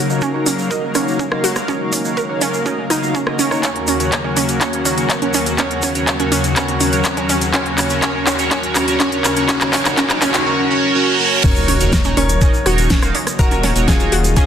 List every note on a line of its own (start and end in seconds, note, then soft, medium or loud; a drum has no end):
0.00 3.59 C#3 medium
0.00 3.59 F#3 medium
0.00 10.42 A#3 medium
0.00 10.42 A#4 medium
0.00 3.59 F5 medium
0.00 riser medium
0.10 0.31 D#4 medium
0.10 0.31 F#4 medium
0.10 0.31 A#4 medium
0.10 0.31 C#5 medium
0.10 shaker medium
0.21 0.29 C#4 loud
0.21 kick loud
0.21 shaker soft
0.34 0.46 D#4 medium
0.34 0.46 F#4 medium
0.34 0.46 A#4 medium
0.34 0.46 C#5 loud
0.46 0.51 C#4 medium
0.46 open hi-hat loud
0.46 shaker loud
0.58 shaker medium
0.71 0.83 D#4 medium
0.71 0.83 F#4 medium
0.71 0.74 A#4 medium
0.71 0.83 A#4 medium
0.71 0.83 D#5 loud
0.71 kick loud
0.71 shaker soft
0.95 0.98 C#4 loud
0.95 1.29 D#4 medium
0.95 1.29 F#4 medium
0.95 1.29 A#4 medium
0.95 1.29 C#5 loud
0.95 cross-stick medium
0.95 open hi-hat loud
0.95 shaker loud
1.08 shaker medium
1.19 1.24 C#4 medium
1.19 kick loud
1.19 shaker soft
1.32 1.44 D#4 medium
1.32 1.44 F#4 medium
1.32 1.44 A#4 medium
1.32 1.44 F5 loud
1.32 cross-stick medium
1.44 1.47 F#4 loud
1.44 open hi-hat medium
1.44 shaker medium
1.55 cross-stick medium
1.55 shaker medium
1.68 1.75 C#4 loud
1.68 2.02 D#4 loud
1.68 2.02 F#4 medium
1.68 2.02 A#4 medium
1.68 2.02 C#5 loud
1.68 kick loud
1.68 shaker soft
1.93 1.97 C#4 medium
1.93 kick medium
1.93 open hi-hat loud
1.93 shaker medium
2.05 2.26 D#4 medium
2.05 2.26 F#4 medium
2.05 2.26 A#4 medium
2.05 2.26 C#5 medium
2.05 shaker medium
2.17 2.20 A#4 medium
2.17 kick loud
2.17 shaker soft
2.29 2.41 D#4 medium
2.29 2.41 F#4 medium
2.29 2.41 A#4 medium
2.29 2.41 C#5 loud
2.41 2.44 C#4 loud
2.41 open hi-hat medium
2.41 shaker medium
2.54 shaker medium
2.66 2.71 C#4 medium
2.66 2.78 D#4 medium
2.66 2.78 F#4 medium
2.66 2.78 A#4 medium
2.66 2.78 D#5 loud
2.66 kick loud
2.66 shaker soft
2.90 2.99 D#4 medium
2.90 2.93 D#4 loud
2.90 2.99 F#4 medium
2.90 2.99 A#4 medium
2.90 2.99 D#5 medium
2.90 cross-stick medium
2.90 open hi-hat loud
2.90 shaker medium
3.02 3.22 D#4 medium
3.02 3.22 F#4 medium
3.02 3.22 A#4 medium
3.02 3.22 F5 medium
3.02 shaker soft
3.15 3.19 C#4 medium
3.15 kick loud
3.15 shaker soft
3.27 3.46 D#4 medium
3.27 3.46 F#4 medium
3.27 3.46 A#4 medium
3.27 3.46 D#5 medium
3.27 cross-stick medium
3.39 3.46 C#4 loud
3.39 open hi-hat medium
3.39 shaker loud
3.51 3.60 D#4 medium
3.51 3.60 F#4 medium
3.51 3.60 A#4 medium
3.51 3.60 C#5 medium
3.51 cross-stick medium
3.51 shaker medium
3.63 10.42 D#2 medium
3.63 10.42 C#3 medium
3.63 10.42 F#3 medium
3.63 3.97 C#4 medium
3.63 3.71 C#4 medium
3.63 3.97 F#4 medium
3.63 10.42 F#4 medium
3.63 3.97 C#5 loud
3.63 kick loud
3.63 clap soft
3.63 closed hi-hat medium
3.63 shaker soft
3.76 closed hi-hat soft
3.87 3.93 C#4 medium
3.87 open hi-hat loud
3.87 shaker medium
4.00 4.21 C#4 medium
4.00 4.21 F#4 medium
4.00 4.21 A#4 medium
4.00 4.21 C#5 medium
4.00 closed hi-hat medium
4.00 shaker soft
4.12 4.15 C#5 medium
4.12 kick loud
4.12 clap soft
4.12 closed hi-hat medium
4.12 shaker soft
4.24 4.36 C#4 medium
4.24 4.27 C#4 medium
4.24 4.36 F#4 medium
4.24 4.36 A#4 medium
4.24 4.36 C#5 medium
4.37 4.39 C#4 medium
4.37 open hi-hat loud
4.37 shaker medium
4.48 closed hi-hat soft
4.48 shaker medium
4.61 4.95 C#4 medium
4.61 4.68 C#4 medium
4.61 4.95 F#4 medium
4.61 4.95 A#4 medium
4.61 4.95 C#5 loud
4.61 kick loud
4.61 clap medium
4.61 closed hi-hat medium
4.61 shaker soft
4.73 closed hi-hat soft
4.85 4.90 C#4 medium
4.85 open hi-hat loud
4.85 shaker loud
4.97 5.19 C#4 medium
4.97 5.19 F#4 medium
4.97 5.19 A#4 medium
4.97 5.19 C#5 medium
4.97 closed hi-hat medium
4.97 shaker soft
5.09 5.13 C#5 medium
5.09 kick loud
5.09 clap medium
5.09 closed hi-hat medium
5.09 shaker soft
5.22 5.34 C#4 medium
5.22 5.25 C#4 medium
5.22 5.34 F#4 medium
5.22 5.34 A#4 medium
5.22 5.34 C#5 loud
5.22 closed hi-hat soft
5.34 5.37 C#4 medium
5.34 open hi-hat medium
5.34 shaker medium
5.46 closed hi-hat medium
5.46 shaker soft
5.58 5.92 C#4 medium
5.58 5.66 C#4 medium
5.58 5.92 F#4 medium
5.58 5.92 A#4 medium
5.58 5.92 C#5 loud
5.58 kick loud
5.58 clap medium
5.58 closed hi-hat medium
5.58 shaker soft
5.71 closed hi-hat soft
5.82 5.88 C#4 medium
5.82 kick medium
5.82 open hi-hat loud
5.82 shaker medium
5.95 6.17 C#4 medium
5.95 6.17 F#4 medium
5.95 6.17 A#4 medium
5.95 6.17 C#5 medium
5.95 closed hi-hat medium
5.95 shaker soft
6.07 6.10 C#5 medium
6.07 kick loud
6.07 clap medium
6.07 closed hi-hat medium
6.07 shaker soft
6.19 6.32 C#4 medium
6.19 6.22 C#4 medium
6.19 6.32 F#4 medium
6.19 6.32 A#4 medium
6.19 6.32 C#5 medium
6.19 closed hi-hat soft
6.32 6.35 C#4 loud
6.32 open hi-hat medium
6.32 shaker medium
6.44 closed hi-hat medium
6.44 shaker soft
6.56 6.90 C#4 medium
6.56 6.63 C#4 loud
6.56 6.90 F#4 medium
6.56 6.90 A#4 medium
6.56 6.90 C#5 loud
6.56 kick loud
6.56 clap medium
6.56 closed hi-hat medium
6.56 shaker soft
6.68 closed hi-hat soft
6.80 6.85 C#4 medium
6.80 open hi-hat loud
6.80 shaker medium
6.92 7.14 C#4 medium
6.92 7.14 F#4 medium
6.92 7.14 A#4 medium
6.92 7.14 C#5 medium
6.92 closed hi-hat soft
6.92 shaker soft
7.04 7.08 C#5 medium
7.04 kick loud
7.04 clap medium
7.04 closed hi-hat medium
7.04 shaker soft
7.17 7.29 C#4 medium
7.17 7.20 C#4 medium
7.17 7.29 F#4 medium
7.17 7.29 A#4 medium
7.17 7.29 C#5 loud
7.17 closed hi-hat soft
7.29 7.32 C#4 loud
7.29 open hi-hat medium
7.29 shaker medium
7.41 closed hi-hat medium
7.41 shaker soft
7.54 7.61 C#4 loud
7.54 7.87 C#4 medium
7.54 7.87 F#4 medium
7.54 7.87 A#4 medium
7.54 7.87 C#5 loud
7.54 kick loud
7.54 clap medium
7.54 closed hi-hat medium
7.54 shaker soft
7.66 closed hi-hat soft
7.78 7.83 C#4 medium
7.78 clap medium
7.78 open hi-hat loud
7.78 shaker medium
7.89 8.00 C#4 medium
7.89 8.00 F#4 medium
7.89 8.00 A#4 medium
7.89 8.00 C#5 medium
7.89 closed hi-hat medium
7.89 shaker medium
8.02 8.10 C#4 loud
8.02 8.36 C#4 medium
8.02 8.36 F#4 medium
8.02 8.36 A#4 medium
8.02 8.36 C#5 loud
8.02 kick loud
8.02 clap medium
8.02 closed hi-hat medium
8.02 shaker soft
8.27 8.32 C#4 medium
8.27 clap medium
8.27 open hi-hat medium
8.27 shaker medium
8.39 8.49 C#4 medium
8.39 8.49 F#4 medium
8.39 8.49 A#4 medium
8.39 8.49 C#5 medium
8.39 closed hi-hat medium
8.39 shaker medium
8.51 8.85 C#4 loud
8.51 8.58 C#4 loud
8.51 8.85 F#4 medium
8.51 8.85 A#4 medium
8.51 8.85 C#5 loud
8.51 kick loud
8.51 clap medium
8.51 closed hi-hat medium
8.51 shaker soft
8.63 closed hi-hat soft
8.75 8.80 C#4 medium
8.75 clap medium
8.75 open hi-hat loud
8.75 shaker medium
8.88 8.98 C#4 medium
8.88 8.98 F#4 medium
8.88 8.98 A#4 medium
8.88 8.98 C#5 medium
8.88 closed hi-hat medium
8.88 shaker soft
9.00 9.34 C#4 loud
9.00 9.07 C#4 loud
9.00 9.34 F#4 medium
9.00 9.34 A#4 medium
9.00 9.34 C#5 loud
9.00 kick loud
9.00 clap medium
9.00 closed hi-hat medium
9.00 shaker soft
9.12 closed hi-hat soft
9.24 9.29 C#4 medium
9.24 clap medium
9.24 open hi-hat medium
9.24 shaker medium
9.36 9.47 C#4 medium
9.36 9.47 F#4 medium
9.36 9.47 A#4 medium
9.36 9.47 C#5 medium
9.36 closed hi-hat medium
9.36 shaker soft
9.49 9.71 C#4 loud
9.49 9.56 C#4 loud
9.49 9.71 F#4 medium
9.49 9.71 A#4 medium
9.49 9.71 C#5 loud
9.49 kick loud
9.49 clap medium
9.49 closed hi-hat medium
9.49 shaker soft
9.61 clap medium
9.61 closed hi-hat soft
9.73 9.80 C#4 loud
9.73 9.96 C#4 loud
9.73 9.96 F#4 medium
9.73 9.96 A#4 medium
9.73 9.96 C#5 loud
9.73 kick medium
9.73 clap loud
9.73 open hi-hat loud
9.73 shaker medium
9.85 clap medium
9.85 closed hi-hat medium
9.85 shaker medium
9.97 10.05 C#4 loud
9.97 10.20 C#4 loud
9.97 10.20 F#4 medium
9.97 10.20 A#4 medium
9.97 10.20 C#5 loud
9.97 kick loud
9.97 clap loud
9.97 closed hi-hat medium
9.97 shaker soft
10.10 clap medium
10.10 closed hi-hat soft
10.22 10.44 C#4 loud
10.22 10.29 C#4 loud
10.22 10.44 F#4 medium
10.22 10.44 A#4 medium
10.22 10.44 C#5 loud
10.22 clap loud
10.22 open hi-hat medium
10.22 shaker medium
10.34 clap medium
10.34 closed hi-hat medium
10.34 shaker soft
10.46 10.69 C#4 loud
10.46 10.69 F#4 medium
10.46 10.69 A#4 medium
10.46 10.69 C#5 loud
10.46 reverse cymbal medium
10.71 10.93 C#4 loud
10.71 10.93 F#4 medium
10.71 10.93 A#4 medium
10.71 10.93 C#5 loud
10.95 11.18 C#4 loud
10.95 11.18 F#4 loud
10.95 11.18 A#4 medium
10.95 11.18 C#5 loud
11.19 11.42 C#4 loud
11.19 11.42 F#4 medium
11.19 11.42 A#4 medium
11.19 11.42 C#5 loud
11.44 11.77 D#1 loud
11.44 14.46 C#3 medium
11.44 14.46 F#3 medium
11.44 14.46 A#3 medium
11.44 14.46 C#4 loud
11.44 11.51 C#4 loud
11.44 14.46 D#4 medium
11.44 11.78 D#4 loud
11.44 11.78 F#4 medium
11.44 11.78 A#4 medium
11.44 12.07 A#4 medium
11.44 11.78 C#5 loud
11.44 12.07 C#5 loud
11.44 12.07 C#6 loud
11.44 kick loud
11.44 closed hi-hat medium
11.44 crash loud
11.44 impact medium
11.44 shaker medium
11.56 closed hi-hat soft
11.56 shaker soft
11.68 11.73 C#4 medium
11.68 open hi-hat loud
11.80 12.14 D#1 medium
11.80 12.02 D#4 medium
11.80 12.02 F#4 medium
11.80 12.02 A#4 medium
11.80 12.02 C#5 medium
11.80 closed hi-hat medium
11.80 shaker medium
11.92 11.96 A#4 medium
11.92 kick loud
11.92 snare loud
11.92 closed hi-hat medium
11.92 shaker medium
12.04 12.08 C#4 medium
12.04 12.17 D#4 medium
12.04 12.17 F#4 medium
12.04 12.17 A#4 medium
12.04 12.17 C#5 loud
12.04 closed hi-hat soft
12.04 shaker soft
12.17 12.50 D#1 medium
12.17 12.20 C#4 loud
12.17 12.80 A#4 medium
12.17 12.80 C#5 medium
12.17 12.80 C#6 medium
12.17 open hi-hat loud
12.29 closed hi-hat medium
12.29 shaker medium
12.41 12.46 C#4 medium
12.41 12.54 D#4 loud
12.41 12.54 F#4 medium
12.41 12.54 A#4 medium
12.41 12.54 D#5 loud
12.41 kick loud
12.41 closed hi-hat medium
12.41 shaker medium
12.54 shaker soft
12.66 12.99 D#1 loud
12.66 13.00 D#4 loud
12.66 13.00 F#4 medium
12.66 12.69 F#4 loud
12.66 13.00 A#4 medium
12.66 13.00 C#5 loud
12.66 cross-stick medium
12.66 open hi-hat loud
12.78 closed hi-hat medium
12.78 shaker medium
12.90 12.97 C#4 loud
12.90 kick loud
12.90 snare loud
12.90 closed hi-hat medium
12.90 shaker medium
13.02 13.12 D#1 medium
13.02 13.15 D#4 medium
13.02 13.15 F#4 medium
13.02 13.15 A#4 medium
13.02 13.15 F5 loud
13.02 cross-stick medium
13.02 closed hi-hat soft
13.02 shaker soft
13.15 13.19 C#4 medium
13.15 open hi-hat medium
13.27 cross-stick medium
13.27 closed hi-hat medium
13.27 shaker medium
13.39 13.72 D#1 loud
13.39 13.73 D#4 loud
13.39 13.73 F#4 medium
13.39 13.83 F#4 medium
13.39 13.73 A#4 medium
13.39 13.83 A#4 medium
13.39 13.42 A#4 medium
13.39 13.73 C#5 loud
13.39 13.83 A#5 medium
13.39 kick loud
13.39 closed hi-hat medium
13.39 shaker medium
13.51 13.54 C#4 medium
13.51 closed hi-hat soft
13.51 shaker soft
13.63 13.66 C#4 loud
13.63 snare soft
13.63 open hi-hat loud
13.76 14.09 D#1 medium
13.76 13.97 D#4 medium
13.76 13.97 F#4 medium
13.76 13.97 A#4 medium
13.76 13.97 C#5 medium
13.76 closed hi-hat medium
13.76 shaker medium
13.88 13.93 C#4 medium
13.88 14.32 F4 medium
13.88 14.32 G#4 medium
13.88 14.32 G#5 medium
13.88 kick loud
13.88 snare loud
13.88 closed hi-hat medium
13.88 shaker medium
14.00 14.12 D#4 medium
14.00 14.12 F#4 medium
14.00 14.12 A#4 medium
14.00 14.12 C#5 loud
14.00 closed hi-hat soft
14.00 shaker soft
14.12 14.45 D#1 medium
14.12 14.15 F#4 loud
14.12 open hi-hat loud
14.24 closed hi-hat medium
14.24 shaker medium
14.36 14.44 C#4 loud
14.36 14.46 D#4 medium
14.36 14.46 F4 medium
14.36 14.46 F#4 medium
14.36 14.46 G#4 loud
14.36 14.46 A#4 medium
14.36 14.46 D#5 loud
14.36 14.46 G#5 loud
14.36 kick loud
14.36 closed hi-hat medium
14.36 shaker medium